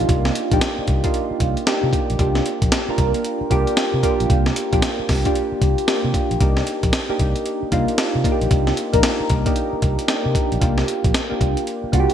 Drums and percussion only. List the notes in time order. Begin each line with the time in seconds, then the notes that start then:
0.09 kick, closed hi-hat
0.25 snare
0.35 closed hi-hat
0.51 kick, closed hi-hat
0.61 snare, closed hi-hat
0.88 kick, closed hi-hat
1.04 kick, closed hi-hat
1.14 closed hi-hat
1.40 kick, closed hi-hat
1.57 closed hi-hat
1.67 snare, closed hi-hat
1.93 kick, closed hi-hat
2.10 closed hi-hat
2.19 kick, closed hi-hat
2.35 snare
2.46 closed hi-hat
2.62 kick, closed hi-hat
2.72 snare, closed hi-hat
2.98 kick, closed hi-hat
3.14 closed hi-hat
3.24 closed hi-hat
3.51 kick, closed hi-hat
3.67 closed hi-hat
3.77 snare, closed hi-hat
4.03 kick, closed hi-hat
4.20 closed hi-hat
4.30 kick, closed hi-hat
4.46 snare
4.56 closed hi-hat
4.73 kick, closed hi-hat
4.82 snare, closed hi-hat
5.09 kick, snare, open hi-hat
5.25 kick, closed hi-hat
5.35 closed hi-hat
5.62 kick, closed hi-hat
5.78 closed hi-hat
5.88 snare, closed hi-hat
6.14 kick, closed hi-hat
6.31 closed hi-hat
6.41 kick, closed hi-hat
6.57 snare
6.67 closed hi-hat
6.83 kick, closed hi-hat
6.93 snare, closed hi-hat
7.19 kick, closed hi-hat
7.36 closed hi-hat
7.46 closed hi-hat
7.72 kick, closed hi-hat
7.88 closed hi-hat
7.98 snare, closed hi-hat
8.24 kick, closed hi-hat
8.41 closed hi-hat
8.51 kick, closed hi-hat
8.67 snare
8.77 closed hi-hat
8.93 kick, closed hi-hat
9.03 snare, closed hi-hat
9.30 kick, closed hi-hat
9.46 kick, closed hi-hat
9.56 closed hi-hat
9.82 kick, closed hi-hat
9.99 closed hi-hat
10.08 snare, closed hi-hat
10.35 kick, closed hi-hat
10.52 closed hi-hat
10.62 kick, closed hi-hat
10.78 snare
10.88 closed hi-hat
11.04 kick, closed hi-hat
11.14 snare, closed hi-hat
11.41 kick, closed hi-hat
11.57 closed hi-hat
11.67 closed hi-hat
11.93 kick, closed hi-hat
12.10 closed hi-hat